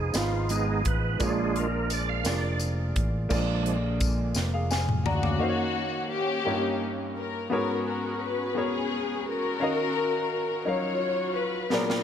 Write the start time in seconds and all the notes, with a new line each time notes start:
Already playing: F1 F3 G#3 B3 D#4 F4 G#4 D#5
0.13 G#1 B3 D#4 F4 G#4 F5, snare, closed hi-hat, tambourine
0.49 G#3 B3 D#4 G#4, closed hi-hat, tambourine
0.85 A1 B4, kick, closed hi-hat
1.19 A#1 A#2 F3 G#3 A#3 D4 F4 G#4 C#5, kick, closed hi-hat, tambourine
1.29 D5
1.56 A#4, closed hi-hat
1.90 D5, closed hi-hat, tambourine
2.09 F5
2.24 F1 A#3 D4 F4 G#4 D5, snare, closed hi-hat, tambourine
2.59 closed hi-hat, tambourine
2.96 A1, kick, closed hi-hat
3.29 A#1 A#2 D3 F3 G#3 A#3 D4 F4 G#4 D5, kick, crash, tambourine
3.66 closed hi-hat
4.00 kick, closed hi-hat, tambourine
4.35 F1, snare, tambourine
4.54 G#4 F5
4.71 G#5, snare, tambourine
4.89 mid tom
5.06 D2 A#3 C#4 F#4 D5 A#5, floor tom
5.23 F5 D6, floor tom
5.39 D#3 A#3 D#4 F#4 C5 F5
5.49 C#5
6.11 A#3 C#4 G4
6.45 G2 A#3 C#4 D#4 F4 C#5
6.54 G4
7.17 A#4
7.50 G#2 B3 C#4 F#4 G#4 A#4 C#5
7.87 A#4
8.22 B4
8.55 B3 C#4 F#4 G#4 A#4 C#5
9.28 C#4 F#4 A#4
9.60 D#3 C#4 F#4 A#4 D#5 F5
10.65 F#3 C#4 D#4 F4 F#4 A#4 C#5 F5
11.37 B4
11.70 A#2 F#3 B3 D4 F4 G#4 A#4 D5, snare
11.90 snare